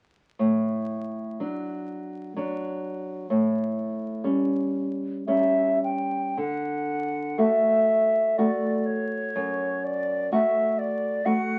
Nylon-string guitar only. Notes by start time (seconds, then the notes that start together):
0.39 A2
1.40 F#3 D4
2.36 F#3 D4
3.30 A2
4.24 G3 C#4
5.28 G3 C#4
6.37 D3
7.38 A3 F#4
8.38 A3 F#4
9.36 F#2
10.32 A3 F#4
11.25 A3 F#4